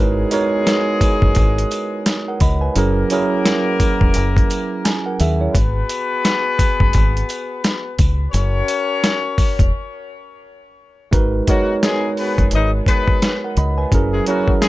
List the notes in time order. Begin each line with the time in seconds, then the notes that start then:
Already playing: G#1 G#3 B3 D#4 E4 F#4 G#4 A#4 B4 C#5
0.31 G#3 D#4 F#4 A#4 C#5, closed hi-hat, sleigh bells
0.66 snare, closed hi-hat, sleigh bells
1.01 kick, closed hi-hat, sleigh bells
1.22 F#1, kick
1.35 G#1, kick, closed hi-hat, sleigh bells
1.58 closed hi-hat
1.71 closed hi-hat, sleigh bells
2.06 snare, closed hi-hat, sleigh bells
2.28 A#4 F#5
2.40 C#2 D#5 B5, kick, closed hi-hat, sleigh bells
2.61 B4 G#5
2.75 F#1 F#3 A#3 C#4 E4 F#4 G#4 A#4, closed hi-hat, sleigh bells
3.10 F#3 C#4 E4 G#4 A#4, closed hi-hat, sleigh bells
3.45 snare, closed hi-hat, sleigh bells
3.80 kick, closed hi-hat, sleigh bells
4.01 E1, kick
4.14 F#1, closed hi-hat, sleigh bells
4.37 kick, closed hi-hat
4.50 closed hi-hat, sleigh bells
4.85 G#5, snare, closed hi-hat, sleigh bells
5.06 A#4 F#5
5.20 D#2 G#4 E5, closed hi-hat, sleigh bells
5.41 E4 C#5
5.54 G#1 B3 F#4 G#4 B4, kick, closed hi-hat, sleigh bells
5.89 closed hi-hat, sleigh bells
6.24 snare, closed hi-hat, sleigh bells
6.59 kick, closed hi-hat, sleigh bells
6.80 F#1, kick
6.93 G#1, kick, closed hi-hat, sleigh bells
7.17 closed hi-hat
7.29 closed hi-hat, sleigh bells
7.64 snare, closed hi-hat, sleigh bells
7.99 C#2, kick, closed hi-hat, sleigh bells
8.31 F#1 C#4 F#4 A#4 C#5, closed hi-hat, sleigh bells
8.68 closed hi-hat, sleigh bells
9.03 snare, closed hi-hat, sleigh bells
9.38 kick, open hi-hat, sleigh bells
9.59 E1, kick, closed hi-hat
11.11 G#1 G#3 D#4 F#4 A#4 B4, kick, closed hi-hat
11.47 F#3 G#3 B3 D#4 F#4 A#4 C#5, kick, closed hi-hat
11.83 G#3 B3 D#4 G#4, snare, closed hi-hat
12.17 B3 F#4 G#4 B4, open hi-hat
12.38 F#1, kick, closed hi-hat
12.51 G#1 D#4 G#4 B4 D#5, closed hi-hat
12.86 B3 F#4 G#4 B4, kick, closed hi-hat
13.08 kick
13.22 snare, closed hi-hat
13.44 A#4 F#5
13.57 C#2 D#5 B5, closed hi-hat
13.78 B4 G#5
13.92 F#1 F#3 C#4 E4 G#4 A#4, kick, closed hi-hat
14.13 G#3 C#4 E4 G#4
14.26 F#3 A#3 C#4 E4 F#4 G#4 A#4, closed hi-hat
14.48 kick
14.62 G#3 C#4 E4 G#4, snare, closed hi-hat